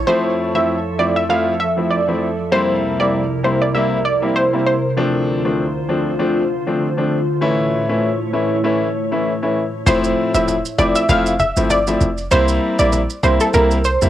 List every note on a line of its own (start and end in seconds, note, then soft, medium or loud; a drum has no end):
0.07 2.49 F2 medium
0.07 2.49 F3 medium
0.07 0.51 F3 medium
0.07 0.51 A3 medium
0.07 0.51 C4 medium
0.07 0.51 E4 loud
0.07 2.49 A4 medium
0.07 0.22 C5 loud
0.07 2.49 E5 medium
0.55 0.74 F3 medium
0.55 0.74 A3 medium
0.55 0.74 C4 medium
0.55 0.74 E4 medium
0.55 0.67 E5 medium
0.99 1.20 F3 medium
0.99 1.20 A3 medium
0.99 1.21 C4 medium
0.99 1.21 E4 medium
0.99 1.14 D5 medium
1.16 1.28 E5 medium
1.29 1.51 F3 medium
1.29 1.51 A3 medium
1.29 1.51 C4 medium
1.29 1.51 E4 loud
1.29 1.45 F5 medium
1.60 1.75 E5 medium
1.77 1.96 F3 medium
1.77 1.96 A3 medium
1.77 1.96 C4 medium
1.77 1.97 E4 medium
1.91 2.36 D5 medium
2.08 2.27 F3 medium
2.08 2.27 A3 medium
2.08 2.27 C4 medium
2.08 2.27 E4 medium
2.52 4.95 C2 medium
2.52 4.95 C3 medium
2.52 2.96 G3 medium
2.52 2.96 A#3 medium
2.52 2.96 C4 medium
2.52 2.96 E4 loud
2.52 4.95 E4 medium
2.52 4.95 A#4 medium
2.52 2.67 C5 loud
3.00 3.19 G3 medium
3.00 3.19 A#3 medium
3.00 3.19 C4 medium
3.00 3.19 E4 medium
3.00 3.12 D5 medium
3.43 3.65 G3 medium
3.43 3.65 A#3 medium
3.43 3.65 C4 medium
3.43 3.65 E4 medium
3.43 3.59 C5 medium
3.61 3.73 D5 medium
3.74 3.96 G3 medium
3.74 3.96 A#3 medium
3.74 3.96 C4 medium
3.74 3.96 E4 loud
3.74 3.90 E5 medium
4.05 4.20 D5 medium
4.22 4.41 G3 medium
4.22 4.41 A#3 medium
4.22 4.41 C4 medium
4.22 4.41 E4 medium
4.36 4.51 C5 medium
4.53 4.72 G3 medium
4.53 4.72 A#3 medium
4.53 4.72 C4 medium
4.53 4.72 E4 medium
4.66 4.82 C5 medium
4.97 7.39 D2 medium
4.97 7.39 D3 medium
4.97 5.40 F3 medium
4.97 5.41 A3 medium
4.97 5.41 C4 medium
4.97 5.41 D4 loud
4.97 7.39 F4 medium
4.97 7.39 C5 medium
5.45 5.64 F3 medium
5.45 5.64 A3 medium
5.45 5.64 C4 medium
5.45 5.64 D4 medium
5.89 6.10 F3 medium
5.89 6.10 A3 medium
5.89 6.10 C4 medium
5.89 6.11 D4 medium
6.19 6.41 F3 medium
6.19 6.41 A3 medium
6.19 6.41 C4 medium
6.19 6.41 D4 medium
6.67 6.86 F3 medium
6.67 6.86 A3 medium
6.67 6.86 C4 medium
6.67 6.86 D4 medium
6.97 7.17 F3 medium
6.97 7.17 A3 medium
6.97 7.17 C4 medium
6.97 7.17 D4 medium
7.41 9.84 A2 medium
7.41 7.85 E3 medium
7.41 7.85 A3 medium
7.41 9.84 A3 medium
7.41 7.85 C#4 medium
7.41 7.85 E4 loud
7.41 9.84 E4 medium
7.41 9.84 C#5 medium
7.89 8.08 E3 medium
7.89 8.08 A3 medium
7.89 8.08 C#4 medium
7.89 8.08 E4 medium
8.33 8.55 E3 medium
8.33 8.55 A3 medium
8.33 8.55 C#4 medium
8.33 8.55 E4 medium
8.64 8.86 E3 medium
8.64 8.86 A3 medium
8.64 8.86 C#4 medium
8.64 8.86 E4 medium
9.12 9.31 E3 medium
9.12 9.31 A3 medium
9.12 9.31 C#4 medium
9.12 9.31 E4 medium
9.42 9.62 E3 medium
9.42 9.62 A3 medium
9.42 9.62 C#4 medium
9.42 9.62 E4 medium
9.86 10.14 F1 loud
9.86 10.30 F3 loud
9.86 10.30 A3 medium
9.86 10.30 C4 medium
9.86 10.30 E4 loud
9.86 10.02 C5 loud
9.86 cajon bass loud
9.86 maracas medium
10.04 maracas medium
10.34 10.62 E1 medium
10.34 10.53 F3 medium
10.34 10.54 A3 medium
10.34 10.54 C4 medium
10.34 10.54 E4 medium
10.34 10.46 E5 medium
10.34 maracas medium
10.48 cajon slap medium
10.48 maracas medium
10.65 maracas medium
10.78 10.94 F1 medium
10.78 11.00 F3 medium
10.78 11.00 A3 medium
10.78 11.00 C4 medium
10.78 11.00 E4 medium
10.78 10.94 D5 medium
10.78 cajon slap loud
10.78 maracas soft
10.96 11.08 E5 medium
10.96 maracas medium
11.09 11.52 F1 loud
11.09 11.31 F3 medium
11.09 11.31 A3 medium
11.09 11.31 C4 medium
11.09 11.31 E4 loud
11.09 11.24 F5 loud
11.09 cajon bass loud
11.09 maracas medium
11.26 maracas medium
11.40 11.55 E5 medium
11.40 cajon bass medium
11.40 maracas medium
11.57 11.96 G1 medium
11.57 11.76 F3 medium
11.57 11.76 A3 medium
11.57 11.76 C4 medium
11.57 11.76 E4 medium
11.57 maracas medium
11.70 12.15 D5 medium
11.70 cajon slap loud
11.70 maracas medium
11.87 12.06 F3 medium
11.87 12.06 A3 medium
11.87 12.07 C4 medium
11.87 12.07 E4 medium
11.87 maracas medium
12.01 12.28 F1 medium
12.01 cajon bass loud
12.01 maracas medium
12.18 maracas medium
12.31 12.59 C2 loud
12.31 12.75 G3 loud
12.31 12.75 A#3 medium
12.31 12.75 C4 medium
12.31 12.75 E4 loud
12.31 12.47 C5 loud
12.31 cajon bass loud
12.31 maracas medium
12.48 maracas medium
12.79 13.07 A#1 loud
12.79 12.98 G3 medium
12.79 12.98 A#3 medium
12.79 12.98 C4 medium
12.79 12.99 E4 medium
12.79 12.91 D5 medium
12.79 maracas medium
12.92 cajon slap medium
12.92 maracas medium
13.10 maracas medium
13.23 13.39 C2 loud
13.23 13.45 G3 medium
13.23 13.45 A#3 medium
13.23 13.45 C4 medium
13.23 13.45 E4 medium
13.23 13.39 C5 medium
13.23 cajon slap loud
13.23 maracas medium
13.40 13.53 A4 medium
13.40 maracas medium
13.54 13.97 C2 loud
13.54 13.75 G3 medium
13.54 13.76 A#3 medium
13.54 13.76 C4 medium
13.54 13.76 E4 loud
13.54 13.69 A#4 medium
13.54 cajon bass medium
13.54 maracas medium
13.71 maracas medium
13.84 14.00 C5 medium
13.84 maracas medium
14.02 14.09 D2 loud
14.02 14.09 G3 medium
14.02 14.09 A#3 medium
14.02 14.09 C4 medium
14.02 14.09 E4 medium
14.02 cajon bass medium
14.02 maracas medium